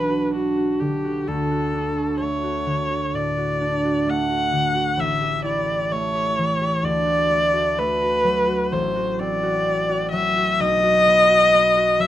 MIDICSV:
0, 0, Header, 1, 3, 480
1, 0, Start_track
1, 0, Tempo, 930233
1, 654, Time_signature, 4, 2, 24, 8
1, 3531, Tempo, 937500
1, 6207, End_track
2, 0, Start_track
2, 0, Title_t, "Viola"
2, 0, Program_c, 0, 41
2, 0, Note_on_c, 0, 71, 64
2, 173, Note_off_c, 0, 71, 0
2, 179, Note_on_c, 0, 66, 59
2, 414, Note_on_c, 0, 67, 58
2, 422, Note_off_c, 0, 66, 0
2, 659, Note_on_c, 0, 69, 61
2, 667, Note_off_c, 0, 67, 0
2, 1139, Note_off_c, 0, 69, 0
2, 1142, Note_on_c, 0, 73, 72
2, 1626, Note_on_c, 0, 74, 65
2, 1633, Note_off_c, 0, 73, 0
2, 2114, Note_on_c, 0, 78, 73
2, 2122, Note_off_c, 0, 74, 0
2, 2579, Note_on_c, 0, 76, 73
2, 2587, Note_off_c, 0, 78, 0
2, 2813, Note_off_c, 0, 76, 0
2, 2816, Note_on_c, 0, 74, 68
2, 3057, Note_on_c, 0, 73, 75
2, 3065, Note_off_c, 0, 74, 0
2, 3536, Note_on_c, 0, 74, 87
2, 3543, Note_off_c, 0, 73, 0
2, 4015, Note_on_c, 0, 71, 88
2, 4023, Note_off_c, 0, 74, 0
2, 4494, Note_on_c, 0, 72, 71
2, 4502, Note_off_c, 0, 71, 0
2, 4735, Note_on_c, 0, 74, 76
2, 4743, Note_off_c, 0, 72, 0
2, 5206, Note_off_c, 0, 74, 0
2, 5209, Note_on_c, 0, 76, 87
2, 5455, Note_on_c, 0, 75, 106
2, 5463, Note_off_c, 0, 76, 0
2, 6176, Note_on_c, 0, 76, 96
2, 6184, Note_off_c, 0, 75, 0
2, 6207, Note_off_c, 0, 76, 0
2, 6207, End_track
3, 0, Start_track
3, 0, Title_t, "Harp"
3, 0, Program_c, 1, 46
3, 0, Note_on_c, 1, 35, 34
3, 0, Note_on_c, 1, 54, 28
3, 0, Note_on_c, 1, 62, 34
3, 46, Note_on_c, 1, 66, 30
3, 162, Note_off_c, 1, 62, 0
3, 169, Note_on_c, 1, 62, 33
3, 287, Note_off_c, 1, 66, 0
3, 293, Note_on_c, 1, 66, 28
3, 415, Note_on_c, 1, 50, 32
3, 474, Note_off_c, 1, 54, 0
3, 530, Note_off_c, 1, 66, 0
3, 536, Note_on_c, 1, 66, 32
3, 660, Note_on_c, 1, 38, 44
3, 669, Note_off_c, 1, 35, 0
3, 674, Note_off_c, 1, 50, 0
3, 773, Note_off_c, 1, 66, 0
3, 780, Note_on_c, 1, 66, 32
3, 891, Note_off_c, 1, 62, 0
3, 897, Note_on_c, 1, 62, 37
3, 1009, Note_off_c, 1, 66, 0
3, 1015, Note_on_c, 1, 66, 35
3, 1139, Note_on_c, 1, 57, 36
3, 1249, Note_off_c, 1, 66, 0
3, 1255, Note_on_c, 1, 66, 30
3, 1372, Note_on_c, 1, 50, 32
3, 1492, Note_off_c, 1, 66, 0
3, 1498, Note_on_c, 1, 66, 33
3, 1617, Note_on_c, 1, 45, 32
3, 1733, Note_off_c, 1, 66, 0
3, 1739, Note_on_c, 1, 66, 32
3, 1855, Note_off_c, 1, 62, 0
3, 1861, Note_on_c, 1, 62, 34
3, 1978, Note_off_c, 1, 66, 0
3, 1984, Note_on_c, 1, 66, 38
3, 2091, Note_off_c, 1, 57, 0
3, 2097, Note_on_c, 1, 57, 39
3, 2210, Note_off_c, 1, 66, 0
3, 2216, Note_on_c, 1, 66, 33
3, 2327, Note_off_c, 1, 50, 0
3, 2333, Note_on_c, 1, 50, 36
3, 2444, Note_off_c, 1, 66, 0
3, 2450, Note_on_c, 1, 66, 40
3, 2565, Note_on_c, 1, 33, 49
3, 2589, Note_off_c, 1, 45, 0
3, 2589, Note_off_c, 1, 66, 0
3, 2590, Note_off_c, 1, 50, 0
3, 2590, Note_off_c, 1, 62, 0
3, 2595, Note_off_c, 1, 38, 0
3, 2688, Note_on_c, 1, 67, 39
3, 2809, Note_on_c, 1, 64, 44
3, 2923, Note_off_c, 1, 67, 0
3, 2930, Note_on_c, 1, 67, 38
3, 3045, Note_off_c, 1, 57, 0
3, 3051, Note_on_c, 1, 57, 38
3, 3163, Note_off_c, 1, 67, 0
3, 3169, Note_on_c, 1, 67, 39
3, 3293, Note_on_c, 1, 52, 39
3, 3405, Note_off_c, 1, 67, 0
3, 3411, Note_on_c, 1, 67, 37
3, 3524, Note_on_c, 1, 38, 44
3, 3545, Note_off_c, 1, 33, 0
3, 3548, Note_off_c, 1, 64, 0
3, 3549, Note_off_c, 1, 67, 0
3, 3550, Note_off_c, 1, 52, 0
3, 3640, Note_on_c, 1, 66, 37
3, 3762, Note_off_c, 1, 57, 0
3, 3768, Note_on_c, 1, 57, 44
3, 3878, Note_off_c, 1, 66, 0
3, 3884, Note_on_c, 1, 66, 38
3, 4005, Note_off_c, 1, 57, 0
3, 4011, Note_on_c, 1, 57, 41
3, 4124, Note_off_c, 1, 66, 0
3, 4130, Note_on_c, 1, 66, 40
3, 4245, Note_on_c, 1, 54, 43
3, 4360, Note_off_c, 1, 66, 0
3, 4366, Note_on_c, 1, 66, 45
3, 4490, Note_on_c, 1, 33, 55
3, 4510, Note_off_c, 1, 38, 0
3, 4605, Note_off_c, 1, 66, 0
3, 4612, Note_on_c, 1, 66, 39
3, 4737, Note_on_c, 1, 60, 49
3, 4849, Note_off_c, 1, 66, 0
3, 4855, Note_on_c, 1, 66, 49
3, 4963, Note_off_c, 1, 60, 0
3, 4970, Note_on_c, 1, 60, 43
3, 5086, Note_off_c, 1, 66, 0
3, 5092, Note_on_c, 1, 66, 38
3, 5207, Note_off_c, 1, 54, 0
3, 5213, Note_on_c, 1, 54, 48
3, 5327, Note_off_c, 1, 66, 0
3, 5333, Note_on_c, 1, 66, 47
3, 5454, Note_on_c, 1, 35, 53
3, 5471, Note_off_c, 1, 33, 0
3, 5472, Note_off_c, 1, 57, 0
3, 5472, Note_off_c, 1, 60, 0
3, 5568, Note_off_c, 1, 66, 0
3, 5574, Note_on_c, 1, 66, 47
3, 5696, Note_on_c, 1, 59, 52
3, 5804, Note_off_c, 1, 66, 0
3, 5810, Note_on_c, 1, 66, 46
3, 5924, Note_off_c, 1, 59, 0
3, 5930, Note_on_c, 1, 59, 45
3, 6046, Note_off_c, 1, 66, 0
3, 6052, Note_on_c, 1, 66, 44
3, 6160, Note_off_c, 1, 54, 0
3, 6166, Note_on_c, 1, 54, 47
3, 6207, Note_off_c, 1, 35, 0
3, 6207, Note_off_c, 1, 54, 0
3, 6207, Note_off_c, 1, 59, 0
3, 6207, Note_off_c, 1, 66, 0
3, 6207, End_track
0, 0, End_of_file